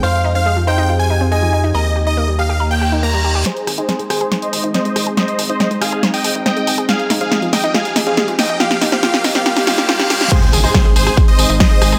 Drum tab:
CC |----------------|----------------|----------------|----------------|
HH |----------------|----------------|xxoxxxoxxxoxxxo-|xxoxxxoxxooxxxox|
TB |----------------|----------------|----------------|----------------|
SD |----------------|----------------|o-r-o-r-o---o-r-|o---o-r-o---o---|
BD |----------------|----------------|----------------|----------------|

CC |----------------|----------------|x---------------|
HH |xxoxxxoxxxoxxxox|xxo-xxoxxoo-xxo-|xxo-xxoxxxoxxxox|
TB |----------------|----------------|x-xx--xxx-xx--xx|
SD |o-o-o-o-o-o-o-o-|oooooooooooooooo|---ro--r----o-r-|
BD |----------------|----------------|o---o---o---o---|